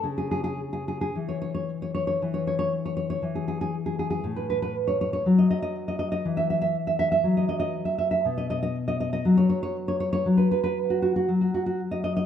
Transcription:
\new Staff \with { instrumentName = "Nylon-string guitar" } { \time 4/4 \key cis \minor \tempo 4 = 59 << { r32 gis'32 gis'32 gis'32 r32 gis'32 gis'32 gis'32 r32 cis''32 cis''32 cis''32 r32 cis''32 cis''32 cis''32 r32 cis''32 cis''32 cis''32 r32 cis''32 cis''32 cis''32 r32 gis'32 gis'32 gis'32 r32 gis'32 gis'32 gis'32 | r32 b'32 b'32 b'32 r32 cis''32 cis''32 cis''32 r32 dis''32 dis''32 dis''32 r32 dis''32 dis''32 dis''32 r32 e''32 e''32 e''32 r32 e''32 e''32 e''32 r32 dis''32 dis''32 dis''32 r32 e''32 e''32 e''32 | r32 dis''32 dis''32 dis''32 r32 dis''32 dis''32 dis''32 r32 cis''32 cis''32 cis''32 r32 cis''32 cis''32 cis''32 r32 b'32 b'32 b'32 r32 fis'32 fis'32 fis'32 r32 fis'32 fis'32 fis'32 r32 dis''32 dis''32 dis''32 | } \\ { cis4 e4 e4 e4 | a,4 fis4 e4 fis4 | b,4 fis4 fis4 fis4 | } >> }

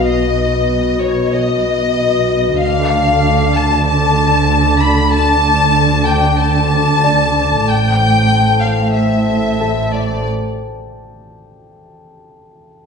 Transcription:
<<
  \new Staff \with { instrumentName = "Violin section" } { \time 4/4 \key a \minor \tempo 4 = 94 dis''4. cis''8 dis''2 | f''4. a''8 a''4. b''8 | a''4. g''8 a''2 | g''4. f''8 e''4. d''8 |
r1 | }
  \new Staff \with { instrumentName = "Grand piano" } { \time 4/4 \key a \minor r2 dis''2~ | dis''4 r2. | r2. d''4~ | d''4. g''4. <a' a''>4 |
r1 | }
  \new Staff \with { instrumentName = "Glass harmonica" } { \time 4/4 \key a \minor <fis' b' dis''>1 | <a' a'' d'''>1~ | <a' a'' d'''>1 | <a' c'' a''>1 |
r1 | }
  \new Staff \with { instrumentName = "Cello section" } { \clef bass \time 4/4 \key a \minor b,1 | d1~ | d1 | a,1 |
r1 | }
  \new Staff \with { instrumentName = "Double bass section" } { \clef bass \time 4/4 \key a \minor b,,1 | d,1~ | d,1 | a,,1 |
r1 | }
>>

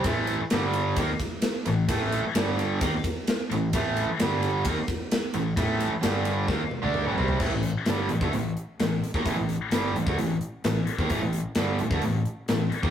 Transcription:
<<
  \new Staff \with { instrumentName = "Distorted electric guitar" } { \clef bass \time 4/4 \key g \lydian \tempo 4 = 130 <a, e a>8. r16 <g, d g>4 <dis bes>16 r4 r16 <a, e>8 | <a, e a>8. r16 <g, d g>4 <dis bes>16 r4 r16 <a, e>8 | <a, e a>8. r16 <g, d g>4 <dis bes>16 r4 r16 <a, e>8 | <a, e a>8. r16 <g, d g>4 <dis bes>16 r8 <d a d'>8 <a, e>16 <c g c'>8 |
<a, e>16 <a, e>8 r16 <g, d g>8 <a, e>16 <d a>16 <a, e>8 r8 <a, e>8 r16 <dis bes>16 | <a, e>16 <a, e>8 r16 <g, d g>8 <a, e>16 <d a>16 <a, e>8 r8 <a, e>8 r16 <dis bes>16 | <a, e>16 <a, e>8 r16 <g, d g>8 <a, e>16 <d a>16 <a, e>8 r8 <a, e>8 r16 <dis bes>16 | }
  \new Staff \with { instrumentName = "Overdriven electric guitar" } { \clef bass \time 4/4 \key g \lydian <a, e a>8. r16 <g, d g>4 <dis bes>16 r4 r16 <a, e>8 | <a, e a>8. r16 <g, d g>4 <dis bes>16 r4 r16 <a, e>8 | <a, e a>8. r16 <g, d g>4 <dis bes>16 r4 r16 <a, e>8 | <a, e a>8. r16 <g, d g>4 <dis bes>16 r8 <d a d'>8 <a, e>16 <c g c'>8 |
<a, e>16 <a, e>8 r16 <g, d g>8 <a, e>16 <d a>16 <a, e>8 r8 <a, e>8 r16 <dis bes>16 | <a, e>16 <a, e>8 r16 <g, d g>8 <a, e>16 <d a>16 <a, e>8 r8 <a, e>8 r16 <dis bes>16 | <a, e>16 <a, e>8 r16 <g, d g>8 <a, e>16 <d a>16 <a, e>8 r8 <a, e>8 r16 <dis bes>16 | }
  \new Staff \with { instrumentName = "Fingered electric bass" } { \clef bass \time 4/4 \key g \lydian a,,8. r16 g,,4 dis,16 r4 r16 a,,8 | a,,8. r16 g,,4 dis,16 r4 r16 a,,8 | a,,8. r16 g,,4 dis,16 r4 r16 a,,8 | a,,8. r16 g,,4 dis,16 r8 d,8 a,,16 c,8 |
a,,16 a,,8 r16 g,,8 a,,16 d,16 a,,8 r8 a,,8 r16 dis,16 | a,,16 a,,8 r16 g,,8 a,,16 d,16 a,,8 r8 a,,8 r16 dis,16 | a,,16 a,,8 r16 g,,8 a,,16 d,16 a,,8 r8 a,,8 r16 dis,16 | }
  \new DrumStaff \with { instrumentName = "Drums" } \drummode { \time 4/4 <bd cymr>8 cymr8 <cymr sn>8 cymr8 <bd cymr>8 <bd cymr>8 <cymr sn>8 <cymr sn>8 | <bd cymr>8 cymr8 <cymr sn>8 cymr8 <bd cymr>8 <bd cymr>8 <cymr sn>8 cymr8 | <bd cymr>8 cymr8 <cymr sn>8 cymr8 <bd cymr>8 <bd cymr>8 <cymr sn>8 cymr8 | <bd cymr>8 cymr8 <cymr sn>8 cymr8 <bd sn>8 tommh16 tommh16 toml8 tomfh16 tomfh16 |
<cymc bd>8 hh8 <hh sn>8 hh16 bd16 hh8 hh8 <hh sn>8 hh16 bd16 | <hh bd>8 hh8 <hh sn>8 hh16 bd16 hh8 hh8 <hh sn>8 hh16 bd16 | <hh bd>8 hh8 <hh sn>8 hh16 bd16 hh8 hh8 <hh sn>8 hh16 bd16 | }
>>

